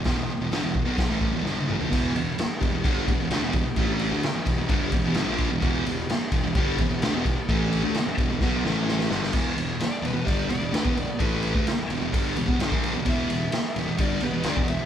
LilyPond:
<<
  \new Staff \with { instrumentName = "Electric slide guitar" } { \time 4/4 \key a \lydian \tempo 4 = 129 r1 | r1 | r1 | r1 |
r1 | r4 d''8 b'8 d''8 d''8 b'8 d''8 | b'4 r2. | e''2 d''8 b'8 d''8 e''8 | }
  \new Staff \with { instrumentName = "Distorted electric guitar" } { \clef bass \time 4/4 \key a \lydian <e, b,>16 <e, b,>16 r16 <e, b,>16 <g, d>16 <e, b,>8 <b, fis>16 <b, fis>16 <a, e a>8 <e, b,>16 <g, d g>8 <a, e>16 <ais, f>16 | <e, b, e>8 <e, b,>8 r8 <e, b,>16 <e, b,>16 <g, d g>8 <e, b,>16 <e, b,>16 <d a>16 <e, b,>16 <e, b,>16 r16 | <a, e a>8. <d a>16 r8 <e, b,>16 <e, b,>16 <g, d g>8 <e, b,>16 <e, b,>16 <g, d>16 <ais, f ais>8 <e, b,>16 | <e, b, e>8 <e, b,>8 r8 <e, b,>16 <e, b,>16 <g, d g>8 <e, b,>16 <e, b,>16 <d a>16 <e, b,>16 <e, b,>16 r16 |
<a, e a>8. <d a>16 r8 <e, b,>16 <e, b,>16 <b, fis b>8 <a, e a>4 <g, d g>8 | <e, b, e>8 <e, b,>8 r8 <e, b,>16 <e, b,>16 <g, d g>8 <e, b,>16 <e, b,>16 <d a>16 <e, b,>16 <e, b,>16 r16 | <a, e a>8. <d a>16 r8 <e, b,>16 <e, b,>16 <g, d g>8 <e, b,>16 <e, b,>16 <g, d>16 <ais, f ais>8 <e, b,>16 | <e, b, e>8 <e, b,>8 r8 <e, b,>16 <e, b,>16 <g, d g>8 <e, b,>16 <e, b,>16 <d a>16 <e, b,>16 <e, b,>16 r16 | }
  \new Staff \with { instrumentName = "Picked electric bass" } { \clef bass \time 4/4 \key a \lydian e,,16 e,,16 r16 e,,16 g,,16 e,,8 b,,16 b,,16 a,,8 e,,16 g,,8 a,,16 ais,,16 | e,,8 e,,8 r8 e,,16 e,,16 g,,8 e,,16 e,,16 d,16 e,,16 e,,16 r16 | a,,8. d,16 r8 e,,16 e,,16 g,,8 e,,16 e,,16 g,,16 ais,,8 e,,16 | e,,8 e,,8 r8 e,,16 e,,16 g,,8 e,,16 e,,16 d,16 e,,16 e,,16 r16 |
a,,8. d,16 r8 e,,16 e,,16 b,,8 a,,4 g,,8 | e,,8 e,,8 r8 e,,16 e,,16 g,,8 e,,16 e,,16 d,16 e,,16 e,,16 r16 | a,,8. d,16 r8 e,,16 e,,16 g,,8 e,,16 e,,16 g,,16 ais,,8 e,,16 | e,,8 e,,8 r8 e,,16 e,,16 g,,8 e,,16 e,,16 d,16 e,,16 e,,16 r16 | }
  \new DrumStaff \with { instrumentName = "Drums" } \drummode { \time 4/4 <hho bd sn>4 <hho sn>8 bd8 <hho bd sn>8 bd8 sn16 tommh16 toml16 tomfh16 | <cymc bd>8 cymr8 <cymr sn>8 <bd cymr>8 <bd cymr>8 <bd cymr>8 <cymr sn>8 <bd cymr>8 | <bd cymr>8 cymr8 <cymr sn>8 <bd cymr>8 <bd cymr>8 <bd cymr>8 <cymr sn>8 <bd cymr>8 | <bd cymr>8 cymr8 <cymr sn>8 <bd cymr>8 <bd cymr>8 <bd cymr>8 <cymr sn>8 <bd cymr>8 |
<bd cymr>8 cymr8 <cymr sn>8 <bd cymr>8 <bd sn>8 sn8 sn16 sn16 sn16 sn16 | <cymc bd>8 cymr8 <cymr sn>8 cymr8 <bd cymr>8 cymr8 <cymr sn>16 bd16 cymr8 | <bd cymr>8 cymr16 bd16 <cymr sn>8 cymr8 <bd cymr>8 cymr16 bd16 <cymr sn>16 bd16 cymr8 | <bd cymr>8 cymr8 <cymr sn>8 cymr8 <bd cymr>8 cymr8 <cymr sn>16 bd16 cymr8 | }
>>